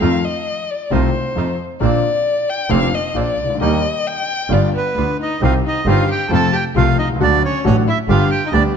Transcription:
0.00 0.20 F2 medium
0.00 0.20 D#3 medium
0.00 0.20 F3 medium
0.00 0.20 A3 medium
0.00 0.20 C4 medium
0.00 0.20 D#4 medium
0.00 0.20 F4 medium
0.00 0.21 F4 medium
0.00 0.26 F5 medium
0.24 0.72 D#5 medium
0.70 0.93 D5 medium
0.91 1.10 C2 medium
0.91 1.10 C3 medium
0.91 1.10 D#3 medium
0.91 1.10 A3 medium
0.91 1.10 C4 medium
0.91 1.10 D#4 medium
0.91 1.10 F4 medium
0.91 1.59 C5 medium
1.35 1.54 F2 medium
1.35 1.55 F2 medium
1.35 1.55 F3 medium
1.35 1.55 A3 medium
1.35 1.55 D#4 soft
1.35 1.55 F4 medium
1.80 1.99 A#1 medium
1.80 2.00 A#1 medium
1.80 2.00 A#2 medium
1.80 1.99 D3 medium
1.80 1.99 A#3 medium
1.80 2.00 A#3 medium
1.80 2.00 C4 medium
1.80 2.00 D4 medium
1.80 2.00 F4 medium
1.80 2.51 D5 medium
2.49 2.72 G5 medium
2.69 2.89 F1 medium
2.69 2.89 F2 medium
2.69 2.89 D3 medium
2.69 2.89 A#3 medium
2.69 2.89 C4 medium
2.69 2.89 D4 medium
2.69 2.89 F4 medium
2.69 2.96 F5 medium
2.95 3.18 D#5 medium
3.14 3.34 A#1 medium
3.14 3.34 A#2 medium
3.14 3.34 A#3 soft
3.14 3.34 C4 soft
3.14 3.34 D4 medium
3.14 3.61 D5 medium
3.37 3.58 C#2 soft
3.44 3.49 C2 medium
3.49 3.55 C#2 medium
3.55 3.60 D2 medium
3.59 3.79 D#2 medium
3.59 3.80 D#2 medium
3.59 3.80 D#3 medium
3.59 3.79 G3 medium
3.59 3.80 G3 medium
3.59 3.79 A#3 medium
3.59 3.80 A#3 medium
3.59 3.79 D#4 medium
3.59 3.80 G4 medium
3.59 4.09 D#5 medium
4.07 4.54 G5 loud
4.49 4.69 G1 medium
4.49 4.69 G2 medium
4.49 4.69 D3 medium
4.49 4.69 G3 medium
4.49 4.69 B3 medium
4.49 4.70 B3 medium
4.49 4.69 F4 medium
4.49 4.70 F4 medium
4.49 4.74 D5 medium
4.75 5.16 B3 medium
4.75 5.17 B4 medium
4.95 5.15 D2 medium
4.95 5.16 D2 medium
4.95 5.15 D3 medium
4.95 5.15 G3 medium
4.95 5.15 B3 soft
4.95 5.16 F4 medium
5.20 5.40 D#4 medium
5.20 5.41 D#5 medium
5.40 5.60 C2 medium
5.40 5.61 C2 medium
5.40 5.61 C3 medium
5.40 5.61 D#3 medium
5.40 5.60 G3 medium
5.40 5.60 C4 medium
5.40 5.61 C4 medium
5.40 5.60 D#4 medium
5.40 5.54 F4 medium
5.40 5.61 G4 medium
5.40 5.54 F5 medium
5.66 5.86 D#4 medium
5.66 5.87 D#5 medium
5.85 6.05 G1 medium
5.85 6.05 G2 medium
5.85 6.05 D#3 medium
5.85 6.05 G3 medium
5.85 6.05 C4 medium
5.85 6.06 C4 medium
5.85 6.05 D#4 medium
5.85 6.08 F4 medium
5.85 6.06 G4 medium
5.91 6.09 F5 medium
6.09 6.30 G4 medium
6.09 6.31 G5 medium
6.29 6.49 F2 medium
6.29 6.50 F2 medium
6.29 6.50 C3 medium
6.29 6.50 F3 medium
6.29 6.50 A3 medium
6.29 6.50 C4 medium
6.29 6.51 F4 medium
6.29 6.52 A4 medium
6.34 6.56 A5 loud
6.53 6.63 G4 medium
6.53 6.65 G5 loud
6.75 6.94 C2 medium
6.75 6.95 C2 medium
6.75 6.95 C3 medium
6.75 6.95 F3 medium
6.75 6.95 A3 medium
6.75 6.95 C4 medium
6.75 6.97 F4 medium
6.75 6.95 F4 medium
6.75 6.97 F5 loud
6.97 7.19 C2 medium
6.97 7.09 D#4 medium
6.97 7.08 D#5 medium
7.04 7.10 B1 soft
7.10 7.15 C2 medium
7.15 7.21 C#2 medium
7.15 7.39 A3 medium
7.20 7.39 D2 loud
7.20 7.39 D2 medium
7.20 7.39 D3 medium
7.20 7.39 F#3 medium
7.20 7.39 A3 medium
7.20 7.39 D4 medium
7.20 7.42 D4 medium
7.20 7.39 F#4 medium
7.20 7.43 D5 loud
7.44 7.64 C#4 medium
7.44 7.65 C#5 medium
7.64 7.84 A1 medium
7.64 7.83 A2 medium
7.64 7.84 D3 medium
7.64 7.84 F#3 medium
7.64 7.84 A3 medium
7.64 7.76 C#4 medium
7.64 7.84 D4 medium
7.64 7.84 F#4 medium
7.64 7.76 C#5 medium
7.87 7.97 E4 medium
7.87 7.99 E5 medium
8.08 8.27 G1 medium
8.08 8.28 G1 medium
8.08 8.28 G2 medium
8.08 8.28 D3 medium
8.08 8.28 G3 medium
8.08 8.28 B3 medium
8.08 8.28 D4 medium
8.08 8.30 F4 medium
8.08 8.28 G4 medium
8.08 8.30 F5 loud
8.30 8.45 G4 medium
8.30 8.49 G5 medium
8.46 8.51 D#4 medium
8.46 8.53 D#5 medium
8.52 8.72 D2 medium
8.52 8.73 D2 medium
8.52 8.73 D3 medium
8.52 8.72 G3 medium
8.52 8.72 B3 medium
8.52 8.73 B3 medium
8.52 8.62 D4 medium
8.52 8.72 D4 medium
8.52 8.73 G4 medium
8.52 8.63 D5 loud

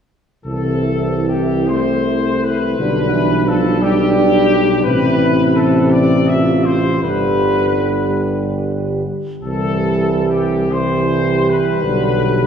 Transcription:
0.45 2.75 C2 soft
0.45 2.75 C3 soft
0.45 1.72 E3 soft
0.45 2.75 E4 soft
0.45 1.24 A4 medium
1.28 1.70 G4 soft
1.68 2.81 A3 soft
1.68 2.43 C5 medium
2.43 3.47 B4 medium
2.78 4.81 B1 soft
2.78 3.13 D3 soft
2.78 3.81 G3 soft
2.78 3.80 D4 soft
3.12 3.46 E3 soft
3.46 3.82 F3 soft
3.46 3.82 A4 medium
3.81 4.83 G3 soft
3.81 4.83 D4 soft
3.81 4.85 G4 medium
4.83 6.99 A1 soft
4.83 6.99 C3 medium
4.83 6.86 C4 medium
4.83 6.25 E4 medium
4.83 5.54 B4 medium
5.57 5.92 A4 medium
5.91 6.28 D5 medium
6.28 7.03 F4 soft
6.28 6.65 E5 medium
6.64 7.03 C5 medium
7.02 9.04 G1 soft
7.02 9.04 D3 soft
7.02 9.04 G3 soft
7.02 9.04 G4 soft
7.02 8.19 B4 medium
9.42 11.79 C2 soft
9.42 10.67 E3 soft
9.42 10.67 G3 soft
9.42 10.66 G4 soft
9.42 10.25 A4 medium
10.29 10.71 G4 soft
10.71 11.85 E3 soft
10.71 11.82 G3 soft
10.71 11.81 G4 soft
10.71 11.47 C5 medium
11.49 12.47 B4 medium
11.84 12.47 B1 soft
11.84 12.47 D3 soft
11.84 12.47 G3 soft
11.84 12.47 G4 soft

